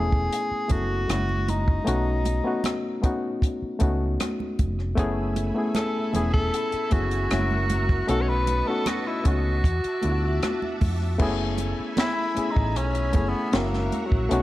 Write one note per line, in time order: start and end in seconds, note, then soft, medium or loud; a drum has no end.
0.00 0.27 E1 medium
0.00 0.68 A3 loud
0.00 0.69 B3 loud
0.00 0.70 C#4 loud
0.00 0.71 E4 loud
0.00 0.73 G#4 loud
0.00 1.11 G#4 loud
0.12 kick medium
0.33 closed hi-hat medium
0.51 muted fingered electric bass stroke soft
0.68 1.05 F#1 medium
0.68 1.08 A3 medium
0.68 1.09 B3 medium
0.68 1.08 C#4 medium
0.68 1.09 E4 medium
0.68 1.51 F#4 medium
0.68 1.10 A4 medium
0.68 kick medium
0.68 closed hi-hat medium
0.68 muted conga soft
0.68 low conga medium
1.07 1.78 F#1 loud
1.07 1.70 G#3 medium
1.07 1.71 A#3 medium
1.07 1.71 C#4 medium
1.07 1.72 E4 medium
1.07 1.72 F#4 medium
1.07 cross-stick loud
1.07 closed hi-hat medium
1.07 high conga medium
1.29 high conga soft
1.48 3.04 D#4 medium
1.48 closed hi-hat medium
1.48 high conga medium
1.68 kick medium
1.85 2.39 B1 medium
1.85 2.22 A3 loud
1.85 2.23 B3 medium
1.85 2.23 C#4 medium
1.85 2.24 D#4 medium
1.85 2.24 F#4 loud
1.85 closed hi-hat medium
2.25 closed hi-hat medium
2.25 muted conga medium
2.44 2.81 A3 medium
2.44 2.81 B3 medium
2.44 2.82 C#4 medium
2.44 2.82 D#4 medium
2.44 2.83 F#4 medium
2.64 cross-stick loud
2.64 closed hi-hat medium
2.64 high conga medium
3.02 3.51 A3 medium
3.02 3.52 B3 medium
3.02 3.52 C#4 medium
3.02 3.52 D#4 medium
3.02 3.53 F#4 medium
3.02 kick medium
3.02 closed hi-hat medium
3.42 kick medium
3.42 closed hi-hat medium
3.62 muted fingered electric bass stroke soft
3.79 4.16 C#2 medium
3.79 4.53 A3 medium
3.79 4.53 B3 medium
3.79 4.54 C#4 medium
3.79 4.54 D#4 medium
3.79 kick medium
3.79 closed hi-hat medium
3.79 muted conga soft
3.83 4.55 F#4 medium
4.20 cross-stick loud
4.20 closed hi-hat medium
4.20 high conga medium
4.40 high conga soft
4.59 4.94 F1 medium
4.59 kick medium
4.59 closed hi-hat medium
4.59 high conga medium
4.79 cross-stick soft
4.96 5.50 F#1 medium
4.96 5.33 A3 loud
4.96 7.29 A3 medium
4.96 5.34 B3 loud
4.96 5.34 C#4 loud
4.96 5.34 E4 loud
4.96 5.35 G#4 loud
4.96 8.06 E5 medium
4.96 7.28 G#5 medium
4.96 7.28 B5 medium
4.96 kick loud
4.96 closed hi-hat medium
5.36 closed hi-hat medium
5.36 muted conga medium
5.54 5.92 A3 medium
5.54 5.92 B3 medium
5.54 5.93 C#4 medium
5.54 5.93 E4 medium
5.54 5.94 G#4 medium
5.75 6.16 A4 medium
5.75 cross-stick loud
5.75 closed hi-hat medium
5.75 high conga medium
6.13 6.49 E1 medium
6.13 6.62 A3 medium
6.13 6.63 B3 medium
6.13 6.63 C#4 medium
6.13 6.63 E4 medium
6.13 6.33 G#4 medium
6.13 6.64 G#4 medium
6.13 closed hi-hat medium
6.13 low conga medium
6.33 6.94 A4 loud
6.33 kick medium
6.54 closed hi-hat medium
6.72 muted fingered electric bass stroke soft
6.72 closed hi-hat soft
6.91 7.27 F#1 medium
6.91 7.30 A3 medium
6.91 7.31 B3 medium
6.91 7.30 C#4 medium
6.91 7.31 E4 medium
6.91 8.11 F#4 medium
6.91 7.32 G#4 medium
6.91 kick medium
6.91 closed hi-hat medium
6.91 muted conga soft
6.91 low conga medium
7.11 closed hi-hat soft
7.29 8.00 F#1 loud
7.29 7.92 G#3 medium
7.29 7.93 A#3 medium
7.29 7.93 C#4 medium
7.29 7.94 E4 medium
7.29 7.94 F#4 medium
7.29 8.08 A#4 medium
7.29 8.08 F#5 medium
7.29 9.62 C#6 medium
7.29 cross-stick loud
7.29 closed hi-hat medium
7.29 high conga medium
7.51 high conga soft
7.70 closed hi-hat medium
7.70 high conga medium
7.89 kick medium
7.89 cross-stick soft
8.07 8.61 B1 loud
8.07 8.44 A3 medium
8.07 8.45 B3 medium
8.07 8.45 C#4 medium
8.07 8.46 D#4 medium
8.07 8.46 F#4 loud
8.07 8.23 A4 loud
8.07 9.62 B4 medium
8.07 9.62 D#5 medium
8.07 9.63 A5 medium
8.07 closed hi-hat medium
8.07 muted conga soft
8.22 8.30 C#5 medium
8.29 8.69 B4 medium
8.47 closed hi-hat medium
8.47 muted conga soft
8.66 9.03 A3 medium
8.66 9.03 B3 medium
8.66 9.04 C#4 medium
8.66 9.04 D#4 medium
8.66 9.05 F#4 medium
8.66 8.89 A4 medium
8.86 9.09 F#4 medium
8.86 cross-stick loud
8.86 closed hi-hat medium
8.86 high conga medium
9.07 9.29 E4 medium
9.24 9.60 C#2 medium
9.24 9.64 A3 medium
9.24 9.64 B3 medium
9.24 9.64 C#4 medium
9.24 9.65 D#4 medium
9.24 10.82 F#4 medium
9.24 9.65 F#4 medium
9.24 kick medium
9.24 closed hi-hat medium
9.64 9.82 E2 loud
9.64 11.19 F#4 medium
9.64 11.19 E5 medium
9.64 11.19 A5 medium
9.64 11.19 D6 medium
9.64 kick medium
9.64 closed hi-hat medium
9.84 muted fingered electric bass stroke soft
9.84 closed hi-hat soft
10.01 10.38 D2 medium
10.01 10.75 A3 medium
10.01 10.76 B3 medium
10.01 10.76 D4 medium
10.01 10.77 E4 medium
10.01 10.11 F4 medium
10.01 closed hi-hat medium
10.01 muted conga soft
10.12 10.80 F#4 medium
10.43 cross-stick loud
10.43 closed hi-hat medium
10.43 high conga medium
10.62 high conga soft
10.81 11.16 F2 medium
10.81 kick medium
10.81 open hi-hat medium
10.81 high conga medium
11.01 cross-stick soft
11.18 11.72 F#1 medium
11.18 11.92 A3 loud
11.18 13.51 A3 medium
11.18 11.93 B3 loud
11.18 11.93 C#4 loud
11.18 11.93 E4 loud
11.18 11.94 G#4 loud
11.18 14.28 E5 medium
11.18 13.51 G#5 medium
11.18 13.51 B5 medium
11.18 kick loud
11.18 crash medium
11.18 muted conga soft
11.58 closed hi-hat medium
11.58 muted conga medium
11.80 muted fingered electric bass stroke soft
11.97 12.52 E4 loud
11.97 snare loud
11.97 closed hi-hat medium
11.97 high conga medium
12.35 12.84 A3 medium
12.35 12.85 B3 medium
12.35 12.85 C#4 medium
12.35 12.86 E4 medium
12.35 12.86 G#4 medium
12.35 muted fingered electric bass stroke soft
12.35 closed hi-hat medium
12.51 12.79 D#4 medium
12.57 12.76 A1 medium
12.57 kick medium
12.76 13.10 B1 medium
12.76 13.30 C#4 loud
12.76 closed hi-hat medium
12.95 closed hi-hat soft
13.12 13.32 F#1 medium
13.12 13.52 A3 medium
13.12 13.53 B3 medium
13.12 13.52 C#4 medium
13.12 13.53 E4 medium
13.12 13.54 G#4 medium
13.12 kick medium
13.12 closed hi-hat medium
13.12 muted conga soft
13.12 low conga medium
13.29 13.56 B3 medium
13.52 13.88 F#1 loud
13.52 14.15 G#3 medium
13.52 14.15 A#3 medium
13.52 14.08 A#3 medium
13.52 14.16 C#4 medium
13.52 14.16 E4 medium
13.52 14.17 F#4 medium
13.52 14.31 A#4 medium
13.52 14.31 F#5 medium
13.52 14.42 C#6 medium
13.52 snare loud
13.52 closed hi-hat medium
13.52 high conga medium
13.73 snare soft
13.92 closed hi-hat medium
13.92 high conga medium
14.07 14.42 F#3 medium
14.12 14.29 A#1 medium
14.12 kick loud
14.29 14.42 B1 loud
14.29 14.42 A3 loud
14.29 14.42 B3 medium
14.29 14.42 C#4 medium
14.29 14.42 D#4 medium
14.29 14.42 B4 medium
14.29 14.42 D#5 medium
14.29 14.42 A5 medium
14.29 closed hi-hat medium
14.29 muted conga soft
14.33 14.42 F#4 loud